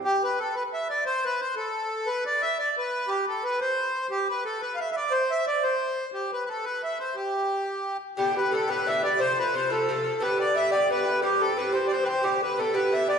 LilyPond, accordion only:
\new Staff \with { instrumentName = "Accordion" } { \time 6/8 \key g \mixolydian \tempo 4. = 118 g'8 b'8 a'8 b'8 e''8 d''8 | c''8 b'8 c''8 a'4. | b'8 d''8 e''8 d''8 b'4 | g'8 a'8 b'8 c''4. |
g'8 b'8 a'8 b'16. f''32 e''16. e''32 d''8 | c''8 e''8 d''8 c''4. | g'8 b'16. b'32 a'8 b'8 e''8 c''8 | g'2~ g'8 r8 |
g'8 b'8 a'8 b'8 e''8 d''8 | c''8 b'8 c''8 a'4. | b'8 d''8 e''8 d''8 b'4 | g'8 a'8 b'8 c''16. d''32 c''16. b'32 c''8 |
g'8 b'8 a'8 b'8 e''8 d''8 | }